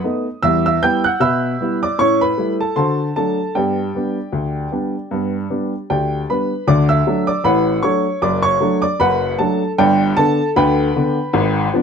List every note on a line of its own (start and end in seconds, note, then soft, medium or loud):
0.04 0.25 A3 soft
0.04 0.26 B3 medium
0.04 0.26 D#4 medium
0.43 0.76 E2 medium
0.43 0.66 G3 medium
0.43 0.64 E5 medium
0.43 0.64 E6 loud
0.66 0.82 E5 medium
0.66 0.83 E6 loud
0.83 1.04 G3 medium
0.83 1.04 B3 medium
0.83 1.04 E4 medium
0.83 1.03 G5 medium
0.83 1.04 G6 loud
1.04 1.21 F#5 medium
1.04 1.21 F#6 loud
1.20 1.54 B2 medium
1.20 1.78 E5 medium
1.20 1.78 B5 medium
1.20 1.69 E6 loud
1.61 1.82 G3 soft
1.61 1.82 B3 soft
1.61 1.83 E4 medium
1.83 1.99 D5 medium
1.83 1.99 D6 medium
1.99 2.32 A2 medium
1.99 2.22 C#4 medium
1.99 2.20 C#5 medium
1.99 2.21 C#6 loud
2.21 2.57 B4 medium
2.21 2.52 B5 medium
2.37 2.59 G3 soft
2.37 2.59 A3 soft
2.37 2.59 E4 medium
2.61 2.76 A4 medium
2.61 2.76 A5 medium
2.76 3.10 D3 medium
2.76 2.99 F#4 soft
2.76 3.13 C5 medium
2.76 3.13 A5 medium
2.76 3.07 C6 medium
3.16 3.38 F#3 soft
3.16 3.38 A3 soft
3.16 3.38 D4 soft
3.16 3.53 A4 medium
3.16 3.53 A5 medium
3.55 3.88 G2 medium
3.55 3.78 B3 soft
3.55 5.90 G4 medium
3.55 5.89 D5 medium
3.55 5.74 G5 medium
3.95 4.16 G3 soft
3.95 4.17 B3 soft
3.95 4.17 D4 soft
4.32 4.66 D2 medium
4.72 4.93 G3 soft
4.72 4.93 B3 soft
4.72 4.94 D4 soft
5.11 5.44 G2 medium
5.11 5.34 B3 soft
5.50 5.72 G3 soft
5.50 5.72 B3 soft
5.50 5.72 D4 soft
5.90 6.23 D2 medium
5.90 6.27 G4 medium
5.90 6.27 D5 medium
5.90 6.21 G5 medium
6.30 6.51 G3 soft
6.30 6.51 B3 soft
6.30 6.51 D4 soft
6.30 6.66 B4 medium
6.30 6.66 B5 medium
6.67 7.01 D2 medium
6.67 7.00 D3 medium
6.67 6.88 D5 medium
6.67 6.89 D6 loud
6.89 7.26 E5 medium
6.89 7.26 E6 loud
7.07 7.28 F#3 medium
7.07 7.28 A3 medium
7.07 7.29 D4 medium
7.27 7.44 D5 medium
7.27 7.45 D6 medium
7.44 7.78 A1 medium
7.44 7.78 A2 medium
7.44 7.82 B4 medium
7.44 7.81 F#5 medium
7.44 7.76 B5 loud
7.83 8.05 F#3 soft
7.83 8.05 A3 medium
7.83 8.05 D4 medium
7.83 8.20 C#5 medium
7.83 8.20 C#6 medium
8.22 8.56 F#1 medium
8.22 8.55 F#2 medium
8.22 8.43 D5 medium
8.22 8.44 D6 loud
8.43 8.81 C#5 medium
8.43 8.81 C#6 loud
8.61 8.82 F#3 medium
8.61 8.83 A3 medium
8.61 8.83 D4 medium
8.82 8.99 D5 medium
8.82 9.00 D6 loud
9.00 9.34 F#1 medium
9.00 9.33 F#2 medium
9.00 9.37 B4 medium
9.00 9.37 F#5 medium
9.00 9.31 B5 loud
9.39 9.61 F#3 medium
9.39 9.61 A3 medium
9.39 9.62 D4 medium
9.39 9.76 A4 medium
9.39 9.70 A5 medium
9.78 10.12 G1 medium
9.78 10.12 G2 loud
9.78 10.15 G4 medium
9.78 10.15 D5 medium
9.78 10.15 G5 loud
10.17 10.38 D3 medium
10.17 10.39 B3 medium
10.17 10.39 D4 medium
10.17 10.54 A4 medium
10.17 10.48 A5 loud
10.56 10.89 D2 medium
10.56 10.89 D3 medium
10.56 11.69 B4 medium
10.56 11.69 G5 medium
10.56 11.69 B5 loud
10.96 11.17 D3 medium
10.96 11.17 B3 medium
10.96 11.18 D4 medium
11.33 11.67 G#1 loud
11.33 11.67 G#2 loud
11.74 11.82 F3 medium
11.74 11.82 B3 medium
11.74 11.82 D4 medium